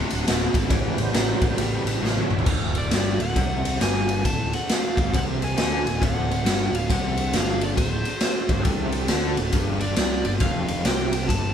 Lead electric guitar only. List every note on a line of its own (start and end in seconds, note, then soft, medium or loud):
2.78 2.92 D5 medium
2.93 3.22 D5 medium
3.21 3.77 F#5 loud
3.82 4.23 G#5 loud
4.25 4.54 A5 loud
4.54 4.69 F#5 medium
4.69 4.80 F#5 medium
4.80 5.15 F5 medium
5.15 5.23 F#5 loud
5.44 6.05 G#5 medium
6.05 6.78 F#5 loud
6.75 6.91 F5 medium
6.92 7.36 F#5 medium
7.36 7.64 F5 medium
7.64 7.69 D5 medium
7.77 8.62 C5 medium
9.81 9.95 D5 medium
9.96 10.25 D5 medium
10.26 10.31 D5 medium
10.41 10.87 F5 medium
10.86 11.12 G5 medium
11.14 11.28 G5 loud
11.28 11.54 A5 loud